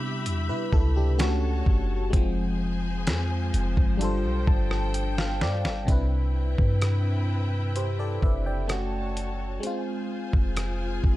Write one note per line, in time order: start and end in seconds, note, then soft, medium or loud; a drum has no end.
0.00 0.27 C3 loud
0.00 1.14 C3 medium
0.00 1.15 G3 medium
0.00 1.15 B3 medium
0.00 0.23 D4 medium
0.00 0.23 E4 medium
0.00 1.16 G4 medium
0.00 1.16 E5 medium
0.00 1.16 B5 medium
0.26 0.51 E2 loud
0.26 closed hi-hat medium
0.49 0.72 C3 loud
0.49 0.72 E4 medium
0.49 0.71 B4 medium
0.73 1.63 C#2 loud
0.73 0.95 E4 medium
0.73 0.95 A4 medium
0.73 kick loud
0.96 1.41 D4 medium
0.96 1.41 G4 medium
1.18 2.12 A3 medium
1.18 2.13 C#4 medium
1.18 2.12 F#4 medium
1.18 2.14 F#4 medium
1.18 2.12 A4 medium
1.18 2.12 C#5 medium
1.18 2.56 F#5 medium
1.18 2.12 A5 medium
1.18 snare loud
1.18 closed hi-hat medium
1.66 2.11 F#1 loud
1.66 kick medium
2.10 3.09 F1 loud
2.10 5.84 F3 medium
2.10 3.95 G#3 medium
2.10 3.97 C4 medium
2.10 3.99 G#4 medium
2.10 5.84 C5 medium
2.10 3.99 G#5 medium
2.10 kick loud
2.10 closed hi-hat medium
2.17 3.99 F3 medium
3.07 3.52 F2 loud
3.07 snare loud
3.07 closed hi-hat medium
3.54 3.76 F1 loud
3.54 closed hi-hat medium
3.77 4.26 G1 loud
3.77 kick medium
3.97 5.83 G3 medium
3.97 5.84 D4 medium
3.97 5.84 F4 medium
3.97 5.86 A4 medium
3.97 5.86 G5 medium
3.97 closed hi-hat medium
4.02 5.85 A4 medium
4.02 5.86 C5 medium
4.24 4.46 B1 loud
4.47 5.43 G1 loud
4.47 4.91 A5 medium
4.47 kick loud
4.71 cross-stick loud
4.94 5.16 G5 medium
4.94 closed hi-hat medium
5.18 5.40 F5 medium
5.18 snare medium
5.41 5.66 G2 loud
5.41 5.85 D5 medium
5.41 snare medium
5.65 5.87 G1 medium
5.65 snare medium
5.85 6.56 C2 loud
5.85 8.64 C3 medium
5.85 8.65 C4 medium
5.85 8.67 C4 medium
5.85 8.65 D4 medium
5.85 8.67 E4 medium
5.85 8.67 B4 medium
5.85 8.67 G5 medium
5.85 kick loud
5.85 closed hi-hat medium
5.90 8.66 E4 medium
5.90 7.74 B4 medium
6.58 8.19 G2 loud
6.58 kick loud
6.82 cross-stick loud
6.82 closed hi-hat medium
7.76 7.98 G4 medium
7.76 7.98 C5 medium
7.76 closed hi-hat medium
7.99 8.22 A4 medium
7.99 8.21 D5 medium
8.22 9.59 F#1 loud
8.22 8.45 B4 medium
8.22 8.45 E5 medium
8.22 kick loud
8.46 8.91 D5 medium
8.46 8.91 G5 medium
8.68 9.62 A3 medium
8.68 9.63 C#4 medium
8.68 9.62 F#4 medium
8.68 9.64 F#4 medium
8.68 9.62 A4 medium
8.68 9.62 C#5 medium
8.68 9.62 A5 medium
8.68 cross-stick loud
8.68 closed hi-hat medium
9.17 closed hi-hat medium
9.60 11.17 G#3 medium
9.60 11.17 C4 medium
9.60 11.17 F4 medium
9.60 11.17 G#4 medium
9.60 11.17 C5 medium
9.60 11.17 G#5 medium
9.60 closed hi-hat medium
9.67 11.17 F4 medium
10.33 11.01 F1 loud
10.33 kick medium
10.57 cross-stick loud
10.57 closed hi-hat medium
11.04 11.17 F1 loud
11.04 kick medium